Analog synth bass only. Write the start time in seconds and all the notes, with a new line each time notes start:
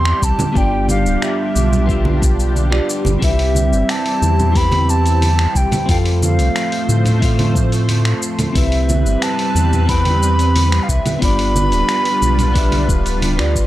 Already playing: E2
0.22 C2
0.55 G1
1.06 D1
1.56 B1
3.06 G1
3.22 C2
3.72 G1
4.22 E2
5.55 C2
5.89 F2
6.39 C2
6.89 A2
8.55 C2
9.05 G1
9.55 E2
10.89 C2
11.22 G1
11.72 D1
12.22 B1
12.89 D1
13.39 D2
13.56 G1